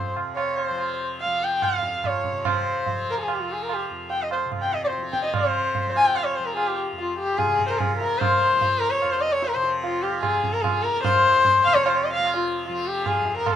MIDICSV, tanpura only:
0, 0, Header, 1, 2, 480
1, 0, Start_track
1, 0, Tempo, 413793
1, 2844, Time_signature, 7, 2, 24, 8
1, 7625, Tempo, 405132
1, 15900, End_track
2, 0, Start_track
2, 0, Title_t, "Tanpura"
2, 0, Program_c, 0, 104
2, 0, Note_on_c, 0, 41, 63
2, 0, Note_on_c, 0, 48, 62
2, 0, Note_on_c, 0, 53, 53
2, 183, Note_off_c, 0, 48, 0
2, 187, Note_on_c, 0, 48, 54
2, 818, Note_off_c, 0, 53, 0
2, 818, Note_on_c, 0, 53, 63
2, 1453, Note_off_c, 0, 53, 0
2, 1453, Note_on_c, 0, 53, 61
2, 2060, Note_off_c, 0, 41, 0
2, 2064, Note_on_c, 0, 41, 58
2, 2682, Note_off_c, 0, 48, 0
2, 2686, Note_on_c, 0, 48, 63
2, 3325, Note_off_c, 0, 53, 0
2, 3325, Note_on_c, 0, 53, 63
2, 3933, Note_off_c, 0, 53, 0
2, 3933, Note_on_c, 0, 53, 62
2, 4528, Note_off_c, 0, 41, 0
2, 4533, Note_on_c, 0, 41, 60
2, 5162, Note_off_c, 0, 48, 0
2, 5167, Note_on_c, 0, 48, 59
2, 5773, Note_off_c, 0, 53, 0
2, 5773, Note_on_c, 0, 53, 57
2, 6182, Note_off_c, 0, 48, 0
2, 6182, Note_on_c, 0, 48, 74
2, 6804, Note_off_c, 0, 53, 0
2, 6804, Note_on_c, 0, 53, 65
2, 7413, Note_off_c, 0, 53, 0
2, 7413, Note_on_c, 0, 53, 68
2, 8039, Note_off_c, 0, 41, 0
2, 8044, Note_on_c, 0, 41, 72
2, 8678, Note_off_c, 0, 48, 0
2, 8678, Note_on_c, 0, 48, 70
2, 9302, Note_off_c, 0, 53, 0
2, 9307, Note_on_c, 0, 53, 62
2, 9930, Note_off_c, 0, 53, 0
2, 9930, Note_on_c, 0, 53, 67
2, 10534, Note_off_c, 0, 41, 0
2, 10539, Note_on_c, 0, 41, 76
2, 11154, Note_off_c, 0, 48, 0
2, 11159, Note_on_c, 0, 48, 64
2, 11789, Note_off_c, 0, 53, 0
2, 11789, Note_on_c, 0, 53, 59
2, 12417, Note_off_c, 0, 53, 0
2, 12417, Note_on_c, 0, 53, 69
2, 13029, Note_off_c, 0, 41, 0
2, 13034, Note_on_c, 0, 41, 75
2, 13654, Note_off_c, 0, 48, 0
2, 13658, Note_on_c, 0, 48, 71
2, 14277, Note_off_c, 0, 53, 0
2, 14277, Note_on_c, 0, 53, 72
2, 14874, Note_off_c, 0, 53, 0
2, 14874, Note_on_c, 0, 53, 71
2, 15481, Note_off_c, 0, 41, 0
2, 15486, Note_on_c, 0, 41, 71
2, 15900, Note_off_c, 0, 41, 0
2, 15900, Note_off_c, 0, 48, 0
2, 15900, Note_off_c, 0, 53, 0
2, 15900, End_track
0, 0, End_of_file